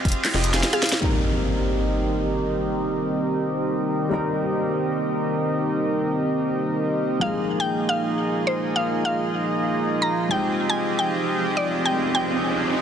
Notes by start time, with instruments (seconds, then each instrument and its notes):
0.05 detuned saw bass F1, supersaw synth C4 F4 G4 G#4 F5, kick, closed hi-hat
0.08 closed hi-hat
0.12 closed hi-hat
0.25 snare, clap, closed hi-hat, crash
0.34 detuned saw bass F1, supersaw synth C4 F4 G4 G#4 D#5, snare
0.44 closed hi-hat
0.53 detuned saw bass F1, supersaw synth C4 F4 G4 G#4 F5, snare, closed hi-hat
0.63 snare, closed hi-hat
0.73 supersaw synth C4 F4 G4 G#4 F5, synth pluck G#4 F5, closed hi-hat
0.83 snare, closed hi-hat
0.86 closed hi-hat
0.89 snare, closed hi-hat
1.00 analog synth pad D#3 G3 A#3 C4 G4, grand piano G3 A#3 C4 D#4 A#4, supersaw synth C4 D#4 G4 A#4 D#5, impact
4.09 grand piano G3 A#3 C4 D#4, supersaw synth C4 D#4 G4 A#4 D#5
4.13 grand piano A#4
7.19 grand piano F3 G#3 A#3 D#4 G#4, analog synth pad F3 G#3 D#4 G#4, supersaw synth A#3 D#4 F4 G#4 D#5, synth pluck F5
7.60 synth pluck G5
7.89 synth pluck F5
8.47 synth pluck C5
8.76 synth pluck F5
9.05 synth pluck F5
10.02 synth pluck A#5
10.29 grand piano F3 G#3 C4 D#4 G5, analog synth pad C4 G5, supersaw synth C4 F4 G4 G#4 D#5, synth pluck G5, riser
10.70 synth pluck G#5
10.99 synth pluck G5
11.57 synth pluck D5
11.86 synth pluck G5
12.15 synth pluck G5